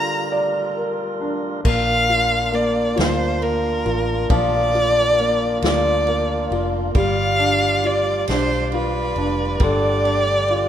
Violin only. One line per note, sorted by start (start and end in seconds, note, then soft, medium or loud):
0.00 0.77 A#5 loud
1.67 2.56 F5 loud
2.55 3.00 D5 medium
2.99 3.44 C5 loud
3.43 4.31 A#4 loud
4.32 5.59 D5 loud
5.65 6.59 D5 loud
6.97 7.88 F5 loud
7.87 8.29 D5 loud
8.30 8.70 C5 loud
8.76 9.64 B4 loud
9.63 10.69 D5 loud